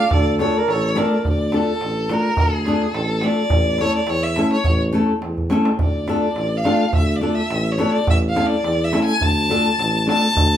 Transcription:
Already playing: accordion D5, violin F5
0.11 tuba D2, accordion A4, violin D5, darbuka dum
0.27 darbuka tek
0.39 nylon-string guitar A3 D4 F4 A4, accordion A4, violin C#5, darbuka tek
0.56 accordion A#4, violin D5, darbuka tek
0.67 tuba A1, accordion A4, violin C#5, darbuka tek
0.84 darbuka tek
0.95 nylon-string guitar A3 D4 F4 A4, accordion A#4, violin D5, darbuka tek
1.12 darbuka tek
1.25 tuba D2, darbuka dum
1.29 violin D5
1.52 nylon-string guitar A3 D4 F4 A4, darbuka tek
1.56 violin A4
1.68 darbuka tek
1.81 tuba A1, darbuka tek
2.09 nylon-string guitar A3 D4 F4 A4, darbuka tek
2.13 violin A#4
2.37 tuba D2, violin G#4, darbuka dum
2.65 nylon-string guitar A3 D4 F4 A4, darbuka tek
2.82 violin A4, darbuka tek
2.93 tuba A1, darbuka tek
3.21 nylon-string guitar A3 D4 F4 A4, violin D5, darbuka tek
3.50 tuba A1, darbuka dum
3.78 nylon-string guitar A3 C#4 E4 A4, violin C#5, darbuka tek
3.96 violin D5
4.07 tuba E2, violin C#5, darbuka tek
4.23 violin E5
4.36 nylon-string guitar A3 C#4 E4 A4, darbuka tek
4.53 violin C#5
4.64 tuba A1, darbuka dum
4.80 darbuka tek
4.92 nylon-string guitar A3 C#4 E4 A4
5.10 darbuka tek
5.22 tuba E2, darbuka tek
5.38 darbuka dum
5.50 nylon-string guitar A3 C#4 E4 A4, darbuka tek
5.65 darbuka tek
5.79 tuba D2, violin D5, darbuka dum
6.07 nylon-string guitar A3 D4 F4 A4, darbuka tek
6.18 violin D5
6.24 darbuka tek
6.35 tuba A1, darbuka tek
6.57 violin F5
6.64 nylon-string guitar A3 D4 F4 A4, darbuka tek
6.93 tuba D2, violin E5, darbuka dum
7.16 violin D5
7.21 nylon-string guitar A3 D4 F4 A4
7.35 violin E5, darbuka tek
7.50 tuba A1, darbuka tek
7.72 violin C#5
7.78 nylon-string guitar A3 D4 F4 A4, darbuka tek
7.92 violin D5
8.07 tuba A1, violin E5, darbuka dum
8.29 violin F5
8.35 nylon-string guitar A3 C#4 E4 A4, darbuka tek
8.46 violin D5
8.52 darbuka tek
8.63 tuba E2, darbuka tek
8.84 violin E5
8.92 nylon-string guitar A3 C#4 E4 A4, darbuka tek
9.04 violin G#5
9.21 tuba D2, violin A5, darbuka dum
9.38 darbuka tek
9.49 nylon-string guitar A3 D4 F4 A4, darbuka tek
9.67 darbuka tek
9.78 tuba A1, darbuka tek
10.07 nylon-string guitar A3 D4 F4 A4, violin A5, darbuka tek
10.35 tuba D2, darbuka dum

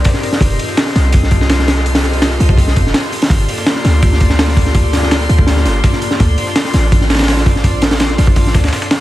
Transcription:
Already playing: synth texture C6
0.04 analog synth pad C4 D#4 G4 A#4 D5, kick, snare, closed hi-hat, open hi-hat
0.14 snare
0.23 closed hi-hat, open hi-hat
0.32 snare
0.41 808-style bass F1, analog synth pad C4 F4 G4 A4 D#5, kick, closed hi-hat, open hi-hat
0.51 closed hi-hat
0.59 closed hi-hat, open hi-hat
0.69 snare
0.77 snare, closed hi-hat, open hi-hat
0.86 snare
0.95 808-style bass C2, analog synth pad C4 F4 G4 A4 D#5, snare, closed hi-hat, open hi-hat
1.12 kick, closed hi-hat, open hi-hat
1.23 snare
1.31 kick, closed hi-hat, open hi-hat
1.41 snare
1.49 analog synth pad C4 F4 G4 A4 D#5, snare, closed hi-hat, open hi-hat
1.59 snare
1.68 snare, open hi-hat
1.77 snare, closed hi-hat
1.86 analog synth pad C4 F4 G4 A4 D#5, closed hi-hat, open hi-hat
1.95 snare, open hi-hat
2.04 snare, closed hi-hat
2.13 open hi-hat
2.22 snare, closed hi-hat, open hi-hat
2.31 snare, closed hi-hat
2.40 808-style bass C2, analog synth pad C4 F4 G4 A4 D#5, closed hi-hat, open hi-hat
2.49 kick
2.58 kick, closed hi-hat, open hi-hat
2.67 snare
2.76 808-style bass F1, kick, closed hi-hat, open hi-hat
2.87 snare
2.94 snare, closed hi-hat, open hi-hat
3.04 snare
3.13 closed hi-hat, open hi-hat
3.22 snare, open hi-hat
3.30 808-style bass G1, analog synth pad A#3 F4 G4 A4 D5, kick, closed hi-hat, open hi-hat
3.40 closed hi-hat
3.49 closed hi-hat, open hi-hat
3.58 snare
3.66 snare, closed hi-hat, open hi-hat
3.76 snare
3.85 808-style bass D2, analog synth pad A#3 F4 G4 A4 D5, snare, closed hi-hat, open hi-hat
4.02 kick, closed hi-hat, open hi-hat
4.13 snare
4.20 kick, closed hi-hat, open hi-hat
4.30 snare
4.39 analog synth pad A#3 F4 G4 A4 D5, snare, closed hi-hat, open hi-hat
4.48 snare
4.57 kick, open hi-hat
4.66 snare, closed hi-hat
4.74 analog synth pad A#3 F4 G4 A4 D5, kick, closed hi-hat, open hi-hat
4.93 snare, closed hi-hat, open hi-hat
5.03 snare
5.11 snare, closed hi-hat, open hi-hat
5.21 snare, closed hi-hat
5.29 808-style bass D2, analog synth pad A#3 F4 G4 A4 D5, closed hi-hat, open hi-hat
5.39 kick
5.47 snare, closed hi-hat, open hi-hat
5.57 snare
5.65 808-style bass G1, snare, closed hi-hat, open hi-hat
5.84 analog synth pad A#3 F4 G4 A4 D5, kick, snare, closed hi-hat, open hi-hat
5.93 snare
6.02 closed hi-hat, open hi-hat
6.11 snare
6.20 808-style bass D2, analog synth pad C4 D4 F4 A4 D5, kick, closed hi-hat, open hi-hat
6.29 closed hi-hat
6.38 closed hi-hat, open hi-hat
6.47 snare
6.56 snare, closed hi-hat, open hi-hat
6.65 snare
6.74 808-style bass A1, analog synth pad C4 D4 F4 A4 D5, snare, closed hi-hat, open hi-hat
6.92 kick, closed hi-hat, open hi-hat
7.01 snare
7.10 snare, closed hi-hat, open hi-hat
7.15 snare, closed hi-hat, open hi-hat
7.19 snare, closed hi-hat, open hi-hat
7.23 snare, closed hi-hat, open hi-hat
7.28 analog synth pad C4 D4 F4 A4 D5, snare, closed hi-hat, open hi-hat
7.37 snare
7.46 kick, open hi-hat
7.55 snare, closed hi-hat
7.64 analog synth pad C4 D4 F4 A4 D5, kick, closed hi-hat, open hi-hat
7.82 snare, closed hi-hat, open hi-hat
7.91 snare, open hi-hat
8.00 snare, closed hi-hat, open hi-hat
8.10 snare, closed hi-hat
8.18 808-style bass A1, analog synth pad C4 D4 F4 A4 D5, closed hi-hat, open hi-hat
8.27 kick
8.36 kick, closed hi-hat, open hi-hat
8.46 snare, closed hi-hat
8.55 808-style bass D2, kick, snare, closed hi-hat, open hi-hat
8.64 snare, closed hi-hat
8.68 snare, closed hi-hat
8.73 snare, closed hi-hat, open hi-hat
8.82 snare, closed hi-hat
8.91 snare, closed hi-hat, open hi-hat

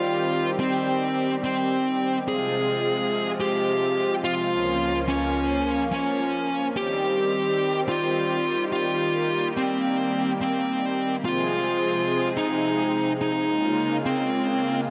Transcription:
Already playing: analog synth pad D#3 G3 C4 G4, lead electric guitar F4
0.60 lead electric guitar C4
1.44 lead electric guitar C4
2.28 analog synth pad C3 F3 G#3 F4, lead electric guitar G#4
3.40 lead electric guitar G4
4.24 lead electric guitar F4
4.52 analog synth pad C#2 A#3 C#4
5.08 lead electric guitar C#4
5.93 lead electric guitar C#4
6.76 analog synth pad D#3 G3 C4 G4, lead electric guitar G4
7.89 lead electric guitar F4
8.73 lead electric guitar F4
9.01 analog synth pad A#3
9.57 lead electric guitar C4
10.41 lead electric guitar C4
11.25 analog synth pad C3 F3 G#3 C4 G#4, lead electric guitar F4
12.37 lead electric guitar D#4
13.21 lead electric guitar D#4
13.49 analog synth pad C#3 G#3 A#3 F4
14.06 lead electric guitar C4

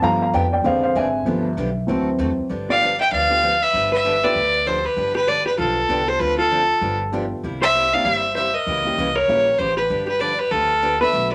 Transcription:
0.02 upright bass G2, steel-string acoustic guitar D3 F3 B3 D4 G4, upright piano F3 A3 B3 F5 A#5
0.22 upright piano F5 A#5
0.33 upright bass F2, steel-string acoustic guitar D3 F3 B3 D4 G4, upright piano D5 G5
0.53 upright piano D5 G5
0.64 upright bass E2, upright piano D3 G#3 C4 C5 F5, steel-string acoustic guitar E3 C4 D4 G#4
0.83 upright piano C5 F5
0.95 upright bass G#1, steel-string acoustic guitar E3 C4 D4 G#4, upright piano E5 G#5
1.25 upright bass G1, steel-string acoustic guitar D3 F3 B3 D4 G4, upright piano F3 A3 B3
1.57 upright bass B1, steel-string acoustic guitar D3 F3 B3 D4 G4
1.87 upright bass D2, steel-string acoustic guitar D3 A3 C4 F#4 A4, upright piano E3 F#3 C4
2.18 upright bass E2, steel-string acoustic guitar D3 A3 C4 F#4 A4
2.38 muted upright bass stroke
2.49 upright bass G1, steel-string acoustic guitar D3 F3 B3 D4 G4
2.68 upright piano A3 B3 D4 F4 G4, hollow-body jazz guitar D5, fiddle F5
2.81 steel-string acoustic guitar D3 F3 B3 D4 G4
3.00 hollow-body jazz guitar E5, fiddle G5
3.12 upright bass D2, steel-string acoustic guitar D3 F3 B3 D4 G4, hollow-body jazz guitar D5, fiddle F5
3.30 upright piano A3 B3 D4 F4 G4
3.43 steel-string acoustic guitar D3 F3 B3 D4 G4
3.62 hollow-body jazz guitar B4, fiddle E5
3.73 upright bass G1, steel-string acoustic guitar D3 F3 B3 D4 G4
3.92 hollow-body jazz guitar B4, fiddle E5
4.04 steel-string acoustic guitar D3 F3 B3 D4 G4
4.22 upright piano A3 B3 D4 F4 G4, hollow-body jazz guitar B4, fiddle D5
4.35 upright bass D2, steel-string acoustic guitar D3 F3 B3 D4 G4
4.66 steel-string acoustic guitar D3 F3 B3 D4 G4, hollow-body jazz guitar A4, fiddle C5
4.84 hollow-body jazz guitar G4, fiddle B4
4.96 upright bass G1, steel-string acoustic guitar D3 F3 B3 D4 G4
5.15 hollow-body jazz guitar G4, fiddle B4
5.27 steel-string acoustic guitar D3 F3 B3 D4 G4, hollow-body jazz guitar B4, fiddle D5
5.46 hollow-body jazz guitar G4, fiddle B4
5.58 upright bass B1, steel-string acoustic guitar D3 F3 B3 D4 G4, hollow-body jazz guitar F4, fiddle A4
5.88 upright bass C2, steel-string acoustic guitar D3 F3 B3 D4 G4, upright piano A3 B3 D4 F4 G4
6.08 hollow-body jazz guitar A4, fiddle C5
6.20 upright bass D2, steel-string acoustic guitar D3 F3 C4 D4 A4, hollow-body jazz guitar F4, fiddle B4
6.38 hollow-body jazz guitar F4, fiddle A4
6.51 steel-string acoustic guitar D3 F3 C4 D4 A4
6.81 upright bass G1, steel-string acoustic guitar D3 F3 B3 D4 G4
7.12 steel-string acoustic guitar D3 F3 B3 D4 G4, upright piano A3 B3 D4 F4 G4
7.43 upright bass C2, steel-string acoustic guitar C3 G3 A#3 E4 G4
7.62 hollow-body jazz guitar C5, fiddle E5
7.74 steel-string acoustic guitar C3 G3 A#3 E4 G4
7.93 upright piano A#3 C4 D4 E4 G4, hollow-body jazz guitar D5, fiddle F5
8.04 upright bass G1, steel-string acoustic guitar C3 G3 A#3 E4 G4, hollow-body jazz guitar C5, fiddle E5
8.35 steel-string acoustic guitar C3 G3 A#3 E4 G4, hollow-body jazz guitar C5, fiddle E5
8.54 hollow-body jazz guitar A#4, fiddle D#5
8.67 upright bass C#2, steel-string acoustic guitar C#3 E3 A#3 C#4 G4
8.85 upright piano G3 A#3 C#4 E4 G4
8.97 upright bass C2, steel-string acoustic guitar C#3 E3 A#3 C#4 G4
9.15 hollow-body jazz guitar A#4, fiddle C#5
9.28 upright bass A#1, steel-string acoustic guitar C#3 E3 A#3 C#4 G4, upright piano G3 A#3 C#4 E4 A#4
9.58 upright bass A1, steel-string acoustic guitar C#3 E3 A#3 C#4 G4, hollow-body jazz guitar G4, fiddle C5
9.77 hollow-body jazz guitar G4, fiddle B4
9.89 upright bass G1, steel-string acoustic guitar D3 F3 B3 D4 G4
10.07 hollow-body jazz guitar G4, fiddle B4
10.19 steel-string acoustic guitar D3 F3 B3 D4 G4, hollow-body jazz guitar B4, fiddle D5
10.39 hollow-body jazz guitar G4, fiddle B4
10.51 upright bass D2, steel-string acoustic guitar D3 F3 B3 D4 G4, hollow-body jazz guitar F4, fiddle A4
10.82 steel-string acoustic guitar D3 F3 B3 D4 G4
11.00 upright piano A3 B3 D4 F#4 A4, hollow-body jazz guitar B4, fiddle E5
11.13 upright bass B1, steel-string acoustic guitar B2 F#3 A3 D4 F#4
11.32 fiddle D5

